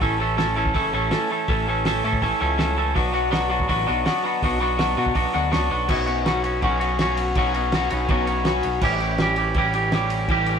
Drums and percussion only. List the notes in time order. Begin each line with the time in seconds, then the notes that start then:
0.01 kick, open hi-hat
0.38 snare, open hi-hat
0.66 kick
0.75 kick, open hi-hat
1.11 snare, open hi-hat
1.48 kick, open hi-hat
1.85 snare, open hi-hat
2.13 kick
2.22 kick, open hi-hat
2.59 snare, open hi-hat
2.96 kick, open hi-hat
3.32 snare, open hi-hat
3.60 kick
3.69 kick, open hi-hat
4.06 snare, open hi-hat
4.42 kick, open hi-hat
4.79 snare, open hi-hat
5.06 kick
5.15 kick, open hi-hat
5.53 snare, open hi-hat
5.89 kick, crash
6.07 ride
6.26 snare, ride
6.44 ride
6.62 kick, ride
6.81 ride
6.99 snare, ride
7.17 ride
7.35 kick, ride
7.54 ride
7.72 snare, ride
7.90 ride
8.09 kick, ride
8.27 ride
8.45 snare, ride
8.63 ride
8.81 kick, crash
9.00 ride
9.18 snare, ride
9.36 ride
9.54 kick, ride
9.73 ride
9.92 snare, ride
10.10 ride
10.28 kick, ride
10.46 ride